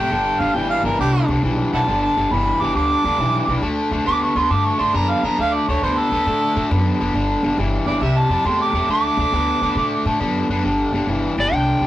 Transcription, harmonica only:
0.00 0.41 G5 medium
0.40 0.56 F5 medium
0.54 0.69 G5 medium
0.70 0.84 F5 medium
0.84 0.98 A#4 medium
1.00 1.28 G4 medium
1.73 1.79 E5 medium
1.73 1.81 F#5 medium
1.73 2.01 A5 medium
2.03 2.34 A5 medium
2.33 2.63 B5 medium
2.62 2.75 D6 medium
2.76 3.61 D6 loud
4.08 4.22 D6 loud
4.23 4.40 C#6 medium
4.38 4.53 C6 medium
4.52 4.67 D6 medium
4.65 4.82 C#6 medium
4.80 4.96 C6 medium
4.95 5.12 A#5 medium
5.11 5.26 F5 medium
5.25 5.39 A#5 medium
5.41 5.55 F5 loud
5.54 5.67 D5 medium
5.68 5.82 C#5 medium
5.83 5.99 C5 medium
5.98 6.83 A4 loud
7.87 8.04 D5 medium
8.02 8.19 E5 medium
8.18 8.48 A5 medium
8.47 8.60 C6 medium
8.61 8.89 D6 medium
8.91 10.17 D6 loud

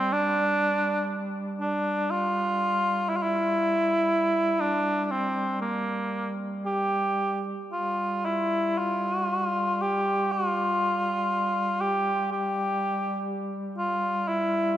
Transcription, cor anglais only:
0.00 0.14 C4 medium
0.13 1.12 D4 loud
1.61 2.13 D4 medium
2.11 3.11 F4 medium
3.09 3.19 E4 medium
3.17 3.24 F4 medium
3.23 4.62 E4 medium
4.60 5.05 D4 medium
5.05 5.12 D4 medium
5.11 5.61 C4 medium
5.61 6.33 A#3 medium
6.66 7.41 G4 medium
7.73 8.27 F4 medium
8.25 8.80 E4 medium
8.78 9.83 F4 medium
9.82 10.33 G4 medium
10.32 11.82 F4 medium
11.81 12.30 G4 medium
12.32 13.26 G4 medium
13.78 14.30 F4 medium
14.28 14.77 E4 medium

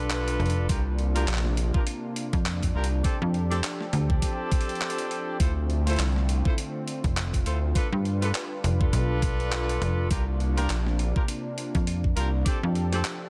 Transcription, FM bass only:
0.00 0.38 B1 medium
0.40 0.67 F1 loud
2.33 2.73 F2 medium
3.22 3.62 F2 loud
3.93 4.20 D2 medium
7.04 7.44 F1 medium
7.92 8.32 G2 loud
8.64 8.91 F1 loud
8.93 9.79 B1 loud
9.82 10.09 F1 loud
11.75 12.15 F2 medium
12.63 13.03 F2 loud

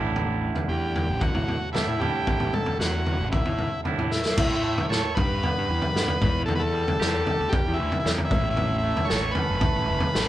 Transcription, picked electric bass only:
0.00 0.50 A1 medium
0.68 1.10 E2 medium
1.08 1.28 A1 medium
1.34 1.54 A2 medium
1.87 2.07 A2 medium
2.27 2.47 A1 medium
2.79 3.21 E2 medium
3.19 3.39 A1 medium
3.46 3.66 A2 medium
3.98 4.18 A2 medium
4.38 4.78 A2 loud
4.90 5.00 A2 medium
5.17 5.47 G2 medium
5.57 5.67 G2 medium
5.70 5.79 E2 medium
5.96 6.05 G2 loud
6.22 6.82 E2 loud
7.00 7.20 E2 medium
7.40 7.50 D2 medium
7.67 7.76 E2 medium
7.80 7.89 D2 medium
8.05 8.15 E2 loud
8.31 8.91 A1 loud
9.11 9.30 A1 medium
9.49 9.59 F#1 medium
9.76 9.85 A1 medium
9.89 9.98 F#1 loud
10.15 10.28 A1 loud

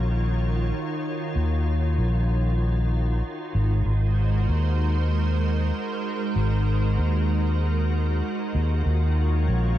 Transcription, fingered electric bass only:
0.00 0.71 A#1 medium
1.36 1.96 D#2 medium
1.98 3.21 A#1 medium
3.55 3.82 G#1 medium
3.86 4.46 G#1 medium
4.48 5.71 D#2 medium
6.36 6.96 G#1 medium
6.98 8.20 D#2 medium
8.55 8.82 D#2 medium
8.86 9.46 D#2 medium
9.48 9.78 A#1 medium

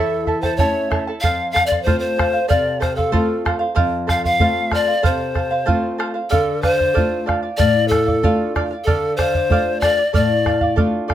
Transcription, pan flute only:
0.00 0.41 A4 medium
0.41 0.58 C5 medium
0.56 1.05 C#5 loud
1.20 1.50 F5 loud
1.51 1.66 F5 loud
1.66 1.82 D5 medium
1.82 1.99 C5 medium
1.99 2.50 C5 loud
2.48 2.80 D5 medium
2.81 2.97 C5 medium
2.96 3.44 A4 medium
4.10 4.24 F5 medium
4.25 4.76 F5 loud
4.74 5.07 D5 medium
5.05 6.00 C5 medium
6.30 6.60 A4 medium
6.62 7.22 C5 loud
7.57 7.89 D5 loud
7.88 8.53 A4 medium
8.84 9.14 A4 medium
9.17 9.82 C5 medium
9.81 10.12 D5 loud
10.15 10.73 D5 medium

